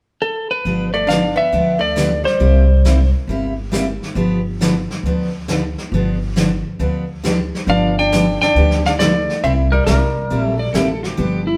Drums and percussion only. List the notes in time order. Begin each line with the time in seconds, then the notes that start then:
0.66 brush sweep
1.10 snare, hi-hat pedal
1.53 brush sweep
1.97 snare, hi-hat pedal
2.26 snare
2.41 brush sweep
2.85 snare, hi-hat pedal
3.29 brush sweep
3.73 snare, hi-hat pedal
4.03 snare
4.17 brush sweep
4.61 snare, hi-hat pedal
4.90 snare
5.04 brush sweep
5.48 snare, hi-hat pedal
5.78 snare
5.92 brush sweep
6.36 snare, hi-hat pedal
6.80 brush sweep
7.24 snare, hi-hat pedal
7.55 snare
7.68 brush sweep
8.12 snare, hi-hat pedal
8.41 snare
8.56 brush sweep
8.71 snare
8.85 snare
8.99 snare, hi-hat pedal
9.30 snare
9.44 brush sweep
9.87 snare, hi-hat pedal
10.30 brush sweep
10.74 snare, hi-hat pedal
11.04 snare
11.18 brush sweep